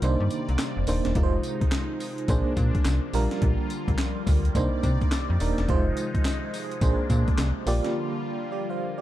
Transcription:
Already playing: analog synth pad G3
0.02 fm bass C2, analog synth pad C3 D#3 A#3 D5, fm electric piano A#3 D4 D#4 C5, closed hi-hat, tambourine
0.20 fm bass G2
0.30 closed hi-hat, tambourine
0.49 fm bass C2, closed hi-hat
0.58 snare, clap, closed hi-hat, tambourine
0.77 fm bass F1
0.87 fm bass D#1, fm electric piano A#3 D4 D#4 C5, open hi-hat, tambourine
1.05 fm bass E1, snare, closed hi-hat
1.15 fm bass F1, analog synth pad D#3 F3 G#3 D#4, fm electric piano G#3 D#4 F4 A#4, kick, closed hi-hat
1.23 fm electric piano C5
1.43 closed hi-hat, tambourine
1.61 fm bass A#1, kick, closed hi-hat
1.72 snare, clap, closed hi-hat, tambourine
2.00 open hi-hat, tambourine
2.18 closed hi-hat
2.28 fm bass A#1, fm electric piano A#3 D4 G#4 C5, analog synth pad A#3 D4, kick, closed hi-hat, tambourine
2.57 fm bass A#2, kick, closed hi-hat, tambourine
2.75 kick, closed hi-hat
2.85 fm bass C2, snare, clap, closed hi-hat, tambourine
3.13 fm bass A#1, analog synth pad D3 G3 F4, fm electric piano G3 D4 F4 A#4, open hi-hat, tambourine
3.31 snare, closed hi-hat
3.42 fm bass A#1, kick, closed hi-hat
3.70 closed hi-hat, tambourine
3.88 fm bass C2, kick, closed hi-hat
3.98 snare, clap, closed hi-hat, tambourine
4.27 fm bass D2, kick, open hi-hat, tambourine
4.45 closed hi-hat
4.55 fm bass C2, analog synth pad C3 D#3 D5, fm electric piano A#3 D4 D#4 C5, kick, closed hi-hat, tambourine
4.83 fm bass C3, kick, closed hi-hat, tambourine
5.01 kick, closed hi-hat
5.12 snare, clap, closed hi-hat, tambourine
5.30 fm bass F2
5.40 fm bass D#1, fm electric piano A#3 D4 D#4 A#4, open hi-hat, tambourine
5.58 fm bass E1, snare, closed hi-hat
5.68 fm bass F1, analog synth pad F3 G#3 D#4, fm electric piano G#3 D#4 F4 C5, kick, closed hi-hat
5.97 closed hi-hat, tambourine
6.14 fm bass A#1, kick, closed hi-hat
6.25 snare, clap, closed hi-hat, tambourine
6.54 open hi-hat, tambourine
6.71 closed hi-hat
6.81 fm bass A#1, analog synth pad C3 A#3 D4, fm electric piano A#3 D4 G#4 C5, kick, closed hi-hat, tambourine
7.10 fm bass A#2, kick, closed hi-hat, tambourine
7.28 kick, closed hi-hat
7.38 fm bass C2, snare, clap, closed hi-hat, tambourine
7.66 fm bass A#1, analog synth pad D3 G3 F4, fm electric piano A#3 F4 G4 D5, open hi-hat, tambourine
7.85 snare, closed hi-hat
8.52 fm electric piano G4 D5
8.70 fm electric piano C5 F5
8.98 fm electric piano D5

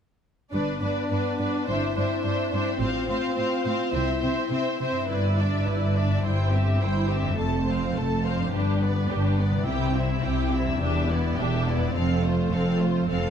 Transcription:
0.53 double bass section G1, cello section G2, french horn section B3 D4, viola section D4, violin section B4 D5
0.81 cello section G2, viola section D4, violin section B4 D5
1.10 cello section G2, viola section D4, violin section B4 D5
1.39 cello section G2, viola section D4, violin section B4 D5
1.66 double bass section G1, cello section G2, french horn section C4 E4, viola section D4, violin section C5 E5
1.96 cello section G2, viola section D4, violin section C5 E5
2.24 cello section G2, viola section D4, violin section C5 E5
2.52 cello section G2, viola section D4, violin section C5 E5
2.79 double bass section A1, cello section A2, viola section C4, french horn section F4, violin section C5 F5
3.08 cello section A2, viola section C4, violin section C5 F5
3.36 cello section A2, viola section C4, violin section C5 F5
3.63 cello section A2, viola section C4, violin section C5 F5
3.92 double bass section C2, cello section C3, viola section C4, french horn section E4, violin section C5 E5
4.21 cello section C3, viola section C4, violin section C5 E5
4.50 cello section C3, viola section C4, violin section C5 E5
4.80 cello section C3, viola section C4, violin section C5 E5
4.91 harp G2
4.96 harp E4
5.01 harp G4
5.05 harp B4, violin section B4
5.09 double bass section G1, cello section G2, viola section E4, violin section D5
5.39 viola section D4, violin section D5 E5
5.65 double bass section G1, cello section G2, viola section E4, violin section B4 D5
5.95 viola section D4, violin section D5 E5
6.06 harp G2
6.10 harp E4
6.15 harp G4
6.19 harp C5
6.24 double bass section G1, cello section G2, viola section E4, violin section C5 G5
6.53 viola section C4, violin section G4 E5
6.81 double bass section G1, cello section G2, viola section E4, violin section C5 G5
7.10 viola section C4, violin section G4 E5
7.21 harp F2
7.26 harp F4
7.30 harp A4
7.35 double bass section F1, viola section A3, violin section A4 A5, harp C5
7.39 cello section F2
7.69 viola section C4, violin section C5 F5
7.95 double bass section F1, cello section F2, viola section A3, violin section A4 A5
8.24 viola section C4, violin section C5 F5
8.36 harp G2
8.41 harp D4
8.45 harp G4
8.50 cello section G2, violin section G4, harp B4
8.54 double bass section G1, viola section D4, violin section B4
8.82 viola section B3, violin section B4 D5
9.09 double bass section G1, cello section G2, viola section D4, violin section G4 B4
9.38 viola section B3, violin section B4 D5
9.50 harp C3 E4
9.58 harp G4
9.63 double bass section C2, viola section E4, harp C5, violin section G5
9.67 cello section C3, violin section G4
9.96 viola section C4, violin section E4 E5
10.23 double bass section C2, cello section C3, viola section E4, violin section G4 G5
10.53 viola section C4, violin section E4 E5
10.64 harp E2
10.68 harp D4
10.73 harp G4
10.77 double bass section E1, cello section E2, harp B4
10.82 viola section D4, violin section G4 E5
11.10 viola section B3, violin section E4 D5
11.38 double bass section E1, cello section E2, viola section D4, violin section G4 E5
11.68 viola section B3, violin section E4 D5
11.77 harp F2
11.81 harp C4
11.85 harp F4
11.90 harp A4
11.94 double bass section F1, cello section F2, viola section C4, violin section A4 F5
12.24 viola section A3, violin section F4 C5
12.52 double bass section F1, cello section F2, viola section C4, violin section A4 F5
12.80 viola section A3, violin section F4 C5
13.08 double bass section F1, cello section F2, viola section C4, violin section A4 F5

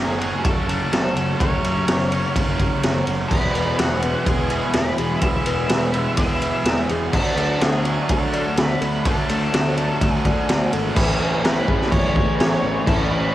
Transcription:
Already playing: picked electric bass F#1, distorted electric guitar F#2 C#3 A3, overdriven electric guitar F#3 A3 C#4 F#4, lead electric guitar G#4
0.20 overdriven electric guitar F#3 A3 C#4 F#4, ride
0.44 picked electric bass F#1, lead electric guitar A4, kick, ride
0.68 lead electric guitar A4, ride
0.93 picked electric bass F#1, snare, ride
1.16 picked electric bass F#1, ride
1.39 picked electric bass F#1, distorted electric guitar F#2 C#3, overdriven electric guitar F#3 A3 C#4 F#4, lead electric guitar C#5, kick, ride
1.64 picked electric bass F#1, ride
1.88 picked electric bass F#1, snare, ride
2.11 overdriven electric guitar F#3 A3 C#4 F#4, ride
2.36 picked electric bass F#1, kick, ride
2.59 kick, ride
2.83 picked electric bass F#1, snare, ride
3.07 picked electric bass F#1, ride
3.29 picked electric bass E1, distorted electric guitar E2 B2, overdriven electric guitar E3 G#3 B3 E4, twelve-string acoustic guitar F#3, lead electric guitar B4, kick, crash
3.55 picked electric bass E1, twelve-string acoustic guitar B3, ride
3.78 picked electric bass E1, twelve-string acoustic guitar F#3, lead electric guitar F#4, snare, ride
4.02 overdriven electric guitar E3 G#3 B3 E4, twelve-string acoustic guitar B3, ride
4.25 picked electric bass E1, twelve-string acoustic guitar F#3, lead electric guitar G#4, kick, ride
4.49 twelve-string acoustic guitar E4, lead electric guitar G#4, ride
4.71 picked electric bass E1, lead electric guitar B4, snare, ride
4.75 twelve-string acoustic guitar B3
4.98 picked electric bass E1, twelve-string acoustic guitar G#4, ride
5.19 picked electric bass E1, distorted electric guitar E2 B2, overdriven electric guitar E3 G#3, twelve-string acoustic guitar F#3, lead electric guitar E5, kick, ride
5.24 overdriven electric guitar B3 E4
5.46 picked electric bass E1, twelve-string acoustic guitar B3, ride
5.69 picked electric bass E1, twelve-string acoustic guitar F#3, snare, ride
5.92 overdriven electric guitar E3 G#3 B3 E4, twelve-string acoustic guitar B3, ride
6.17 picked electric bass E1, twelve-string acoustic guitar F#3, lead electric guitar E5, kick, ride
6.42 twelve-string acoustic guitar E4, ride
6.65 picked electric bass E1, twelve-string acoustic guitar B3, snare, ride
6.89 picked electric bass E1, twelve-string acoustic guitar G#4, ride
7.12 picked electric bass D2, overdriven electric guitar D3 F#3 A3 D4, twelve-string acoustic guitar F#3, lead electric guitar A4, kick, crash
7.36 picked electric bass D2, twelve-string acoustic guitar A3, ride
7.61 picked electric bass D2, twelve-string acoustic guitar F#3, lead electric guitar G#4, snare, ride
7.85 overdriven electric guitar D3 F#3 A3 D4, twelve-string acoustic guitar A3, ride
8.09 picked electric bass D2, twelve-string acoustic guitar F#3, lead electric guitar A4, kick, ride
8.33 twelve-string acoustic guitar D4, ride
8.57 picked electric bass D2, twelve-string acoustic guitar A3, lead electric guitar B4, snare, ride
8.81 picked electric bass D2, twelve-string acoustic guitar A4, ride
9.05 picked electric bass D2, overdriven electric guitar D3 F#3 A3 D4, twelve-string acoustic guitar F#3, lead electric guitar A4, kick, ride
9.29 picked electric bass D2, twelve-string acoustic guitar A3, ride
9.54 picked electric bass D2, twelve-string acoustic guitar F#3, snare, ride
9.77 overdriven electric guitar D3 F#3 A3 D4, twelve-string acoustic guitar A3, ride
10.01 picked electric bass D2, twelve-string acoustic guitar F#3, kick, ride
10.10 lead electric guitar G#4
10.25 twelve-string acoustic guitar D4, kick, ride
10.49 picked electric bass D2, twelve-string acoustic guitar A3, snare, ride
10.73 picked electric bass G#1, twelve-string acoustic guitar A4, ride
10.96 picked electric bass A1, overdriven electric guitar A2 E3 A3 C#4 E4, twelve-string acoustic guitar E3, kick, crash
11.20 picked electric bass A1, twelve-string acoustic guitar E3
11.44 picked electric bass A1, twelve-string acoustic guitar A3, lead electric guitar B4, snare, crash
11.67 picked electric bass A1, distorted electric guitar A2 E3 A3, twelve-string acoustic guitar G#4, kick
11.81 snare
11.91 picked electric bass F#1, twelve-string acoustic guitar C#4, lead electric guitar C#5, kick, crash
12.16 twelve-string acoustic guitar A3, kick
12.39 picked electric bass A1, twelve-string acoustic guitar C#4, snare, crash
12.63 picked electric bass A1, twelve-string acoustic guitar E3
12.86 picked electric bass A1, overdriven electric guitar A2 E3 A3 C#4 E4, twelve-string acoustic guitar E3, lead electric guitar A4, kick, crash
13.11 picked electric bass A1, twelve-string acoustic guitar E3, lead electric guitar B4

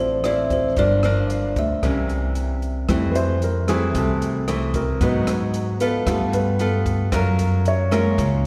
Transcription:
Already playing: upright bass A1, nylon-string guitar A2 F3 C4 E4, grand piano E5
0.00 kalimba C5
0.24 nylon-string guitar F3 C4 E4, kalimba D5, cross-stick, closed hi-hat
0.50 kalimba C5, kick, closed hi-hat
0.77 upright bass G1, nylon-string guitar G2 F3 A#3 D4, kalimba D5, kick, closed hi-hat
1.03 nylon-string guitar F3 A#3 D4, cross-stick, closed hi-hat
1.30 grand piano D5, closed hi-hat
1.56 upright bass D2, kalimba E5, kick, closed hi-hat
1.83 upright bass C2, nylon-string guitar C3 E3 A#3 C#4, kick, cross-stick, closed hi-hat
2.09 grand piano A#4, closed hi-hat
2.35 closed hi-hat
2.62 closed hi-hat
2.88 nylon-string guitar F2 E3 A3 C4, upright bass F2, grand piano G3 A3 E4, kick, cross-stick, closed hi-hat
3.11 grand piano B4
3.15 grand piano C5, closed hi-hat
3.42 grand piano A#4, closed hi-hat
3.68 nylon-string guitar E3 A3 C4, grand piano G3 A3 E4 G#4, cross-stick, closed hi-hat
3.95 upright bass C2, nylon-string guitar C3, grand piano A4, kick, closed hi-hat
4.22 closed hi-hat
4.48 nylon-string guitar E3 A3 C4, cross-stick, closed hi-hat
4.74 grand piano A#4, kick, closed hi-hat
5.01 nylon-string guitar G#2 F#3 B3 D#4, upright bass G#2, grand piano B3 F#4 B4, kick, closed hi-hat
5.27 cross-stick, closed hi-hat
5.54 closed hi-hat
5.80 nylon-string guitar B3 F4 A4, grand piano B4, closed hi-hat
6.06 upright bass G2, nylon-string guitar G3, grand piano A3 B3 F4 A4, kick, cross-stick, closed hi-hat
6.33 grand piano B4, closed hi-hat
6.59 nylon-string guitar B3 F4 A4, closed hi-hat
6.86 kick, closed hi-hat
7.12 upright bass F#2, nylon-string guitar F#3 C#4 F4 A#4, grand piano A#4, kick, cross-stick, closed hi-hat
7.39 closed hi-hat
7.65 grand piano C#5, closed hi-hat
7.91 grand piano G#3 A#3 F4, nylon-string guitar C#4 F4 A#4, cross-stick, closed hi-hat
8.18 upright bass C#2, nylon-string guitar C#3, kick, closed hi-hat

